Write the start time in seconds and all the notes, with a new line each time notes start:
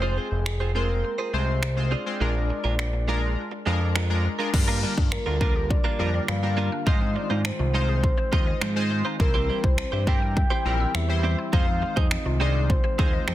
Already playing: F1 G#3 C4 F4 C5
0.02 C4 F4 G#4 C5
0.16 C4 F4 G#4 C5
0.31 F1, muted clean electric guitar stroke
0.46 finger snap, muted clean electric guitar stroke
0.60 C4 F4 G#4 C5
0.75 G#3 C4 F4 G#4 A#4 C5
0.89 muted clean electric guitar stroke
1.04 muted clean electric guitar stroke
1.18 C4 F4 G#4 C5
1.33 C2 G#3 C4 F4 G#4 C5
1.62 finger snap, muted clean electric guitar stroke
1.77 G#3 C4 F4 C5, muted clean electric guitar stroke
1.91 C4 F4 G#4 C5 D5
2.06 G#3 C4 F4 C5, muted clean electric guitar stroke
2.20 A#1 G#3 D4 F4 A#4
2.35 muted clean electric guitar stroke
2.50 muted clean electric guitar stroke
2.64 A#1 G#3 D4 F4 A#4
2.79 finger snap
2.93 muted clean electric guitar stroke
3.08 G#3 D4 F4 A#4
3.23 muted clean electric guitar stroke
3.51 muted clean electric guitar stroke
3.66 F2 G#3 D4 F4 A#4
3.81 muted clean electric guitar stroke
3.95 G#3 D4 F4 A#4, finger snap
4.10 G#3 D4 F4 A#4, muted clean electric guitar stroke
4.24 muted clean electric guitar stroke
4.39 G#3 D4 F4 A#4
4.53 G2 D3 F3 G3 A#3 D4 F4 A#4, muted clean electric guitar stroke, kick, crash
4.68 A#3 D4 F4 A#4
4.83 G3 A#3 D4 F4 A#4
4.97 G2 D4, muted clean electric guitar stroke, kick
5.12 A#3 A#4, finger snap, muted clean electric guitar stroke
5.26 D2 A#3 D4 F4 A#4
5.40 G3 A#3 D4 F4 A#4, kick
5.55 G4, muted clean electric guitar stroke
5.70 F4 D5, muted clean electric guitar stroke, kick
5.84 A#3 D4 F4 A#4
5.99 F2 G3 A#3 D4 F4 G4 A#4
6.13 D5, muted clean electric guitar stroke
6.28 G2 F3 F5, finger snap, muted clean electric guitar stroke
6.43 G3 A#3 D4 F4 A#4, muted clean electric guitar stroke
6.57 G3 A#3 D4 F4 A#4
6.72 D4
6.86 G#2 D#3 F3 G#3 C4 D#4 F4 C5 D#5, kick
7.01 C4, muted clean electric guitar stroke
7.16 G#3 D5, muted clean electric guitar stroke
7.30 G#2 G#3 D#4 F4 C5
7.45 C4 C5, finger snap
7.59 C2 F4, muted clean electric guitar stroke
7.74 G#3 D#4 F4 C5
7.88 G#4, muted clean electric guitar stroke
8.03 F4 C5, kick
8.18 C5, muted clean electric guitar stroke
8.32 D#2 G#3 D#4 F4 G#4 C5 D#5, kick
8.47 D#5, muted clean electric guitar stroke
8.61 G#2 F3 G#3 D#4 F4 C5, finger snap
8.76 G#3 C4 D#4 F4 C5
8.90 G#3, muted clean electric guitar stroke
9.05 G#3 D#4 F4 C5
9.19 C2 E3 G3 C4 E4 G4 A#4 C5, muted clean electric guitar stroke, kick
9.34 C4 E4 G4 C5
9.48 G3 C4 E4 G4 C5
9.64 C2 E4 C5, kick
9.78 C4, finger snap, muted clean electric guitar stroke
9.92 G2 C4 E4 G4 C5 E5
10.07 G3 C4 E4 G4 A#4 C5 G5, kick
10.22 G5, muted clean electric guitar stroke
10.36 E5, muted clean electric guitar stroke, kick
10.50 C4 E4 G4 C5 C6
10.65 A#1 G3 C4 E4 G4 A#4 C5 G5
10.80 E6
10.94 E2 E3 E5, finger snap, muted clean electric guitar stroke
11.09 G3 C4 E4 C5, muted clean electric guitar stroke
11.23 G3 C4 E4 G4 C5
11.38 E4
11.53 F2 D#3 F3 G#3 C4 D#4 F4 G#4 C5 F5, kick
11.67 C4, muted clean electric guitar stroke
11.82 G#3, muted clean electric guitar stroke
11.96 F2 C4 D#4 G#4 C5 D#5, kick
12.11 C4, finger snap
12.26 C2 F4, muted clean electric guitar stroke
12.40 G#3 C4 D#4 F4 G#4 C5 D5
12.55 G#4, muted clean electric guitar stroke
12.69 F4 C5, kick
12.84 C5, muted clean electric guitar stroke
12.98 D#2 G#3 C4 D#4 F4 G#4 C5, kick
13.13 D#5, muted clean electric guitar stroke
13.27 F2 F3 C4 D#4 G#4 C5, finger snap